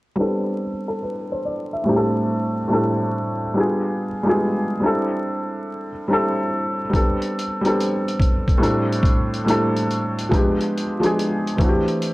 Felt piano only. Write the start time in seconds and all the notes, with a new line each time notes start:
0.16 G3 B3 C4
0.20 D4 A4
0.88 A4
1.02 B4
1.32 C5
1.45 D5
1.73 E5
1.84 A2 G3 A3 C4
1.89 D4 G4
1.96 A4
2.68 A2 G3 A3 C4
2.72 D4 A4
3.54 G3 B3 D4
3.58 F4 G#4
4.23 G3 G#3 D4
4.28 B3 F4 G#4
4.80 G3 C4 D4
4.84 E4 A4
6.08 G3 C4 D4
6.12 E4 A4
6.90 G3 B3 C4
6.94 D4 A4
7.61 G3 B3 C4
7.66 D4 A4
8.58 A2 G3 A3 C4
8.62 D4 A4
9.45 A2 G3 A3 C4
9.49 D4 A4
10.29 F3 G#3 B3
10.34 D4 G4
11.00 F3 G#3 B3 D4
11.05 G#4
11.57 E3 A3 C4
11.61 D4 F#4
11.69 G4